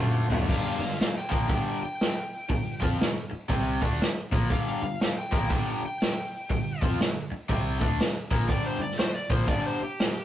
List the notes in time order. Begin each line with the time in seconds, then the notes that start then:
Already playing: F#2 D3 A3 F4 F#4 C5
0.00 F5, mid tom
0.29 D2 D3 A3, floor tom
0.33 F#5
0.41 floor tom
0.47 G1 G2 D3 G3 F5, kick, crash
0.79 G1 G2 D3
0.85 snare
0.94 snare
1.00 F5, snare, open hi-hat
1.18 G5
1.29 A#1 A#2 F3 A#3, kick
1.48 G1 G2 D3 G3, kick, open hi-hat
1.83 G5
2.00 snare, open hi-hat
2.49 G1 G2 D3, kick, open hi-hat
2.80 F2 F3 C4 F4, kick
2.99 G1 G2 D3, snare, open hi-hat
3.31 muted overdriven electric guitar stroke, muted picked electric bass stroke
3.49 C2 C3 G3 C4, kick, open hi-hat
3.82 D2 D3 A3 D4, kick
4.00 muted overdriven electric guitar stroke, muted picked electric bass stroke, snare, open hi-hat
4.32 A#1 A#2 F3 A#3, kick
4.49 G1 G2 D3 G3 F5, kick, open hi-hat
4.82 G1 G2 D3
5.00 F5, snare, open hi-hat
5.19 G5
5.31 A#1 A#2 F3 A#3, kick
5.48 G1 G2 D3 G3, kick, open hi-hat
5.86 G5
6.00 snare, open hi-hat
6.50 G1 G2 D3, kick, open hi-hat
6.81 F2 F3 C4 F4, kick
6.99 G1 G2 D3, snare, open hi-hat
7.32 muted picked electric bass stroke, muted overdriven electric guitar stroke
7.49 C2 C3 G3 C4, kick, open hi-hat
7.80 D2 D3 A3 D4, kick
7.97 muted picked electric bass stroke, muted overdriven electric guitar stroke, snare, open hi-hat
8.31 A#1 A#2 F3 A#3, kick
8.48 G1 G2 D3 G3 D5, kick, open hi-hat
8.66 C5
8.79 G1 G2 D3 D5
8.91 snare
8.98 C5, snare, open hi-hat
9.14 D5
9.29 A#1 A#2 F3 A#3 C5, kick
9.47 G1 G2 D3 G3 D5, kick, open hi-hat
9.66 C5
9.83 G4
9.99 snare, open hi-hat